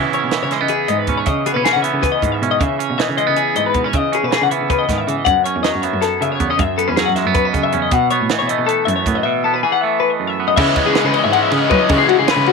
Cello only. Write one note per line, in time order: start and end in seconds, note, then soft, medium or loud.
0.24 0.38 B2 medium
0.43 0.57 C#3 medium
0.62 0.76 C#3 medium
0.89 0.97 G#2 medium
1.08 1.26 B2 medium
1.27 1.42 C#3 medium
1.56 1.71 B2 medium
1.76 1.90 C#3 medium
1.94 2.09 C#3 medium
2.23 2.30 G#2 medium
2.42 2.60 B2 medium
2.61 2.76 C#3 medium
2.90 3.05 B2 medium
3.08 3.23 C#3 medium
3.28 3.43 C#3 medium
3.57 3.64 G#2 medium
3.75 3.93 B2 medium
3.94 4.08 C#3 medium
4.23 4.38 B2 medium
4.41 4.56 C#3 medium
4.61 4.75 C#3 medium
4.89 4.97 G#2 medium
5.07 5.26 C#3 medium
5.27 5.41 F#2 medium
5.56 5.70 E2 medium
5.75 5.89 F#2 medium
5.93 6.08 F#2 medium
6.21 6.29 C#3 medium
6.40 6.59 E2 medium
6.59 6.74 F#2 medium
6.89 7.03 E2 medium
7.08 7.22 F#2 medium
7.25 7.40 F#2 medium
7.54 7.62 C#3 medium
7.73 7.91 E2 medium
7.92 8.06 B2 medium
8.21 8.35 A2 medium
8.42 8.56 B2 medium
8.59 8.73 B2 medium
8.87 8.94 F#2 medium
9.06 9.13 A2 medium
10.58 10.72 C#3 loud
10.86 11.00 C#3 medium
11.04 11.12 C#3 medium
11.25 11.39 G#2 medium
11.52 11.59 C#3 medium
11.71 11.78 F#3 loud
11.90 12.04 C#3 loud
12.19 12.33 C#3 medium
12.36 12.44 C#3 loud